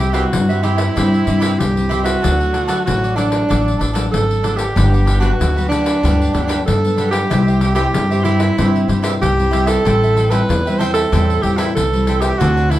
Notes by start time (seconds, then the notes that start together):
Already playing: C2 C3 G4
0.00 E4 G4 C5 E5, pandeiro
0.13 G3 C4 E4 F#4 G4 C5 E5, pandeiro
0.33 G2, pandeiro
0.49 G3 C4 E4 G4 C5 E5, pandeiro
0.62 E4 G4 C5 E5, pandeiro
0.77 G4 C5 E5, pandeiro
0.96 G2 C3 G3 C4 E4 G4 C5 E5, pandeiro
1.14 pandeiro
1.26 G2 G3 C4 E4 G4 C5 E5, pandeiro
1.40 E4 G4 C5 E5, pandeiro
1.59 C2 G2 G4, pandeiro
1.77 G3 C4 E4, pandeiro
1.89 E4 G4 C5 E5, pandeiro
2.04 F#4 G4 C5 E5, pandeiro
2.22 D2 D3 F#3 A3 D4 A4 D5 F#5, pandeiro
2.39 A4 D5 F#5, pandeiro
2.53 D4 A4 D5 F#5, pandeiro
2.68 F#3 A3 D4 A4 D5 F#5, pandeiro
2.85 A1 A2 F#4, pandeiro
3.02 A4 D5 F#5, pandeiro
3.16 F#3 A3 D4 A4 D5 F#5, pandeiro
3.30 A4 D5 F#5, pandeiro
3.49 A1 D3 F#3 A3 D4 A4 D5 F#5, pandeiro
3.68 pandeiro
3.79 A1 D4 A4 D5 F#5, pandeiro
3.93 F#3 A3 D4 A4 D5 F#5, pandeiro
4.12 G#1 A4, pandeiro
4.31 pandeiro
4.43 F#3 A3 D4 A4 D5 F#5, pandeiro
4.57 G4 A4 D5 F#5, pandeiro
4.75 G1 G2 F#3 B3 D4 G4 B4 F#5, pandeiro
4.92 G4 B4 F#5, pandeiro
5.05 D4 G4 B4 F#5, pandeiro
5.20 F#3 B3 D4 F#4 G4 B4 F#5, pandeiro
5.40 D2 D3, pandeiro
5.56 F#3 B3 D4 G4 B4 F#5, pandeiro
5.69 D4 G4 B4 F#5, pandeiro
5.84 G4 B4 F#5, pandeiro
6.03 D2 G2 F#3 B3 D4 G4 B4 F#5, pandeiro
6.22 pandeiro
6.33 D2 F#3 B3 D4 G4 B4 F#5, pandeiro
6.48 D4 G4 B4 F#5, pandeiro
6.66 G2 D3 A4, pandeiro
6.84 F#3 B3 D4, pandeiro
6.97 D4 G4 B4 F#5, pandeiro
7.11 G4 B4 F#5, pandeiro
7.30 C2 C3 G3 C4 E4 G4 C5 E5, pandeiro
7.47 G4 C5 E5, pandeiro
7.61 E4 G4 C5 E5, pandeiro
7.74 G3 C4 E4 G4 C5 E5, pandeiro
7.94 G2, pandeiro
8.11 G3 C4 E4 G4 C5 E5, pandeiro
8.24 E4 G4 C5 E5, pandeiro
8.39 G4 C5 E5, pandeiro
8.58 G2 C3 G3 C4 E4 G4 C5 E5, pandeiro
8.76 pandeiro
8.88 G2 G3 C4 E4 G4 C5 E5, pandeiro
9.02 E4 G4 C5 E5, pandeiro
9.21 C2 G2 G4, pandeiro
9.39 G3 C4 E4, pandeiro
9.51 E4 G4 C5 E5, pandeiro
9.66 G4 A4 C5 E5, pandeiro
9.85 A1 A2 G3 C4 E4 A4 C5 E5 G5, pandeiro
10.02 C5 E5 G5, pandeiro
10.15 A4 C5 E5 G5, pandeiro
10.30 G3 C4 E4 A4 B4 C5 E5 G5, pandeiro
10.49 E2 E3, pandeiro
10.66 G3 C4 E4 C5 E5 G5, pandeiro
10.79 A4 C5 E5 G5, pandeiro
10.94 A4 C5 E5 G5, pandeiro
11.12 E2 A2 G3 C4 E4 A4 C5 E5 G5, pandeiro
11.30 pandeiro
11.42 E2 G3 C4 E4 G4 A4 C5 E5 G5, pandeiro
11.57 E4 A4 C5 E5 G5, pandeiro
11.75 C2 E3 A4, pandeiro
11.93 G3 C4 E4, pandeiro
12.07 A4 C5 E5 G5, pandeiro
12.21 G4 C5 E5 G5, pandeiro
12.39 D2 D3 A3 C4 F#4 A4 C5 D5, pandeiro
12.57 A4 C5 D5, pandeiro
12.70 E4 F#4 A4 C5 D5, pandeiro